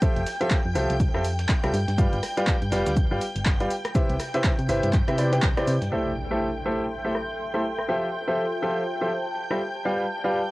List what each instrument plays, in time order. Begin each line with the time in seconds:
Already playing: string machine G5 G6
0.02 grand piano F3 F4 G4 A4 C5 E5, kick, closed hi-hat, shaker
0.16 fm bass F1, closed hi-hat
0.26 snare, open hi-hat, shaker
0.41 grand piano F3 F4 G4 A4 C5 E5, closed hi-hat
0.50 kick, snare, clap, closed hi-hat, shaker
0.65 fm bass F2
0.75 fm bass C2, grand piano F3 F4 G4 A4 C5 E5, open hi-hat, shaker
0.90 fm bass C2, closed hi-hat
1.00 kick, closed hi-hat, shaker
1.14 fm bass F2, grand piano F3 F4 G4 A4 C5 E5, cross-stick
1.25 open hi-hat, shaker
1.39 snare, closed hi-hat
1.49 kick, snare, clap, closed hi-hat, shaker
1.64 fm bass C2, grand piano G3 F4 G4 A4 C5 E5, cross-stick, closed hi-hat
1.74 fm bass G2, open hi-hat, shaker
1.88 fm bass G2, snare, closed hi-hat
1.98 grand piano G3 F4 G4 B4 D5 F5, kick, closed hi-hat, shaker
2.13 fm bass G1, closed hi-hat
2.23 cross-stick, open hi-hat
2.37 grand piano G3 F4 G4 B4 D5 F5, closed hi-hat
2.47 kick, snare, clap, closed hi-hat, shaker
2.62 fm bass G2, closed hi-hat
2.72 fm bass F1, grand piano G3 F4 G4 B4 D5 F5, snare, open hi-hat, shaker
2.87 fm bass D2, snare, closed hi-hat, shaker
2.97 kick, closed hi-hat, shaker
3.11 fm bass G1, grand piano G3 F4 G4 B4 D5 F5
3.21 open hi-hat, shaker
3.36 fm bass G1, closed hi-hat
3.46 kick, snare, clap, closed hi-hat, shaker
3.60 grand piano G3 F4 G4 B4 D5 F5, closed hi-hat
3.71 open hi-hat, shaker
3.85 cross-stick, closed hi-hat
3.95 grand piano C3 E4 G4 B4 C5 E5, kick, closed hi-hat, shaker
4.10 fm bass C2, closed hi-hat
4.20 cross-stick, snare, open hi-hat, shaker
4.34 grand piano C3 E4 G4 B4 C5 E5, closed hi-hat
4.44 kick, snare, clap, closed hi-hat, shaker
4.59 fm bass C3, closed hi-hat
4.69 fm bass G1, grand piano C3 E4 G4 B4 C5 E5, open hi-hat, shaker
4.83 fm bass G2, closed hi-hat
4.93 kick, clap, closed hi-hat, shaker
5.08 fm bass C3, grand piano C3 E4 G4 B4 C5 E5, cross-stick, closed hi-hat
5.18 grand piano C3 E4 G4 B4 C5 D5, open hi-hat, shaker
5.32 grand piano C3 E4 G4 B4 C5 G5, closed hi-hat
5.42 fm bass C2, kick, snare, clap, closed hi-hat, shaker
5.57 grand piano C3 E4 G4 B4 C5 D5, cross-stick, closed hi-hat
5.67 fm bass C3, open hi-hat, shaker
5.82 fm bass G2, snare, closed hi-hat
5.92 grand piano A3 E4 G4 A4 C5 E5, analog synth pad A4, string machine G5 G6, impact
6.31 grand piano A3 E4 G4 A4 C5 E5, analog synth pad E5
6.36 analog synth pad C6
6.66 grand piano A3 E4 G4 A4 C5 E5, snare
7.05 grand piano A3 E4 G4 A4 C5 E5
7.15 cross-stick
7.54 grand piano A3 E4 G4 A4 C5 E5
7.78 cross-stick
7.88 grand piano F3 F4 G4 A4 C5 E5, analog synth pad F4
8.11 analog synth pad C5, snare
8.28 grand piano F3 F4 G4 A4 C5 E5
8.53 analog synth pad G5 A5
8.62 grand piano F3 F4 G4 A4 C5 E5
9.01 grand piano F3 F4 G4 A4 C5 E5
9.26 snare
9.50 grand piano G3 F4 G4 A4 C5 E5, cross-stick
9.61 analog synth pad G4
9.75 snare
9.83 grand piano G3 F4 G4 B4 D5 F5, analog synth pad D5
10.10 open hi-hat
10.24 grand piano G3 F4 G4 B4 D5 F5
10.29 analog synth pad B5